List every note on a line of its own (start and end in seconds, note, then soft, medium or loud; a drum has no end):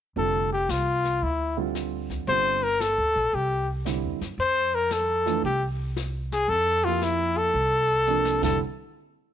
0.16 0.65 F1 medium
0.16 0.48 D3 soft
0.16 0.48 G3 soft
0.16 0.48 C4 soft
0.16 0.48 F4 medium
0.16 0.50 A4 medium
0.16 brush sweep soft
0.53 0.72 G4 medium
0.69 1.18 C2 medium
0.69 1.25 F4 medium
0.69 snare medium
0.69 hi-hat pedal medium
1.04 snare soft
1.22 2.24 D2 medium
1.22 1.58 E4 medium
1.22 brush sweep soft
1.57 2.24 D3 medium
1.57 2.24 G3 medium
1.57 2.24 C4 medium
1.57 2.24 F4 medium
1.75 snare soft
1.75 hi-hat pedal soft
2.10 kick soft
2.10 snare soft
2.28 2.94 G1 medium
2.28 2.60 D3 medium
2.28 2.60 G3 soft
2.28 2.60 C4 soft
2.28 2.60 F4 medium
2.28 2.65 C5 medium
2.28 brush sweep soft
2.63 2.82 A#4 medium
2.80 3.36 A4 medium
2.80 snare medium
2.80 hi-hat pedal medium
2.98 3.14 D2 soft
3.15 3.32 A#1 medium
3.33 3.99 C2 medium
3.33 3.69 G4 medium
3.33 brush sweep soft
3.85 4.17 D3 soft
3.85 4.18 G3 soft
3.85 4.18 C4 soft
3.85 4.18 E4 medium
3.85 snare medium
3.85 hi-hat pedal medium
4.03 4.20 E2 medium
4.21 4.37 F#2 medium
4.21 snare soft
4.38 5.39 F2 medium
4.38 4.77 C5 medium
4.38 brush sweep soft
4.75 4.94 A#4 medium
4.91 5.44 A4 medium
4.91 snare medium
4.91 hi-hat pedal medium
5.26 5.42 E3 medium
5.26 5.42 A3 medium
5.26 5.42 D4 medium
5.26 5.42 F4 medium
5.26 snare soft
5.43 6.45 C2 medium
5.43 5.66 G4 medium
5.43 brush sweep soft
5.96 snare medium
5.96 hi-hat pedal medium
6.32 6.51 G#4 medium
6.32 snare soft
6.48 7.50 F2 medium
6.48 6.86 A4 loud
6.48 brush sweep soft
6.84 7.51 F3 medium
6.84 7.51 A#3 medium
6.84 7.51 E4 medium
6.84 7.05 F4 medium
6.84 7.52 G4 medium
7.02 7.39 E4 medium
7.02 snare medium
7.02 hi-hat pedal medium
7.38 8.43 A4 medium
7.54 8.38 C2 medium
7.54 brush sweep soft
8.07 8.42 C3 medium
8.07 8.43 F3 medium
8.07 8.43 A#3 medium
8.07 8.43 D4 medium
8.07 hi-hat pedal soft
8.25 snare medium
8.42 8.59 F1 medium
8.42 8.58 D3 medium
8.42 8.58 G3 medium
8.42 8.58 C4 medium
8.42 8.58 E4 medium
8.42 8.59 A4 medium
8.42 kick medium
8.42 snare medium
8.42 crash medium